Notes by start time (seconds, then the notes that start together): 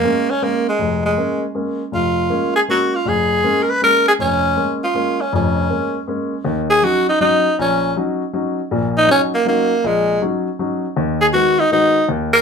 Already playing: A#3
0.04 G#3 A#3 C#4
0.30 C#4
0.42 G#3 A#3 C#4
0.69 G#3
0.79 F1
1.05 G#3
1.17 G#3 A#3 C#4
1.55 G#3 A#3 C#4
1.92 F1 F4
2.30 G#3 A#3 C#4
2.56 G#4
2.68 G#3 A#3 C#4 F#4
2.95 F4
3.05 F1 G#4
3.43 G#3 A#3 C#4
3.63 A#4
3.70 B4
3.82 G#3 A#3 C#4 A#4
4.08 G#4
4.19 F1 C#4
4.56 G#3 A#3 C#4
4.84 F4
4.94 G#3 A#3 C#4
5.21 C#4
5.33 F1 F2 C#4
5.70 G#3 A#3 C#4
6.07 G#3 A#3 C#4
6.44 D#2 D#3
6.70 G#4
6.83 F#3 C#4 D#4 F#4
7.09 D#4
7.21 F#3 C#4 D#4
7.59 A#1 C#4
7.96 F#3 C#4 D#4
8.33 F#3 C#4 D#4
8.71 A#1 A#2
8.97 D#4
9.08 F#3 C#4 D#4
9.34 A#3
9.45 F#3 A#3 C#4 D#4
9.84 A#1 G#3
10.22 F#3 C#4 D#4
10.59 F#3 C#4 D#4
10.96 D#2 D#3
11.21 G#4
11.33 D#3 G#3 B3 F#4
11.60 D#4
11.71 D#3 G#3 B3 D#4 F#4
12.09 D#2
12.33 A#4